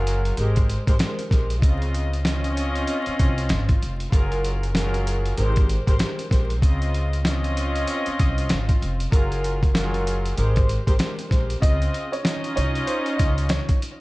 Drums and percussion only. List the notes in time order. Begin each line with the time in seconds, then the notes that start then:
0.07 closed hi-hat
0.25 closed hi-hat
0.37 closed hi-hat
0.56 kick, closed hi-hat
0.69 closed hi-hat
0.87 kick, closed hi-hat
0.99 snare, closed hi-hat
1.19 closed hi-hat
1.31 kick, snare, closed hi-hat
1.50 closed hi-hat
1.62 kick, closed hi-hat
1.82 closed hi-hat
1.94 closed hi-hat
2.13 closed hi-hat
2.25 snare, closed hi-hat
2.44 closed hi-hat
2.57 closed hi-hat
2.75 closed hi-hat
2.87 closed hi-hat
3.06 closed hi-hat
3.19 kick, closed hi-hat
3.38 closed hi-hat
3.49 snare, closed hi-hat
3.69 kick, closed hi-hat
3.82 closed hi-hat
4.00 closed hi-hat
4.12 kick, closed hi-hat
4.32 closed hi-hat
4.44 closed hi-hat
4.63 closed hi-hat
4.75 snare, closed hi-hat
4.94 closed hi-hat
5.07 closed hi-hat
5.26 closed hi-hat
5.38 closed hi-hat
5.56 kick, closed hi-hat
5.69 closed hi-hat
5.87 kick, closed hi-hat
5.99 snare, closed hi-hat
6.19 closed hi-hat
6.31 kick, snare, closed hi-hat
6.50 closed hi-hat
6.62 kick, closed hi-hat
6.82 closed hi-hat
6.94 closed hi-hat
7.13 closed hi-hat
7.25 snare, closed hi-hat
7.44 closed hi-hat
7.57 closed hi-hat
7.75 closed hi-hat
7.87 closed hi-hat
8.06 closed hi-hat
8.19 kick, closed hi-hat
8.38 closed hi-hat
8.49 snare, closed hi-hat
8.69 kick, closed hi-hat
8.82 closed hi-hat
9.00 closed hi-hat
9.12 kick, closed hi-hat
9.32 closed hi-hat
9.44 closed hi-hat
9.63 kick, closed hi-hat
9.75 snare, closed hi-hat
9.94 closed hi-hat
10.07 closed hi-hat
10.25 closed hi-hat
10.37 closed hi-hat
10.56 kick, closed hi-hat
10.69 closed hi-hat
10.87 kick, closed hi-hat
10.99 snare, closed hi-hat
11.19 closed hi-hat
11.31 kick, snare, closed hi-hat
11.50 closed hi-hat
11.62 kick, closed hi-hat
11.82 closed hi-hat
11.94 closed hi-hat
12.13 closed hi-hat
12.25 snare, closed hi-hat
12.44 closed hi-hat
12.57 closed hi-hat
12.75 closed hi-hat
12.87 closed hi-hat
13.06 closed hi-hat
13.19 kick, closed hi-hat
13.38 closed hi-hat
13.49 snare, closed hi-hat
13.69 kick, closed hi-hat
13.82 closed hi-hat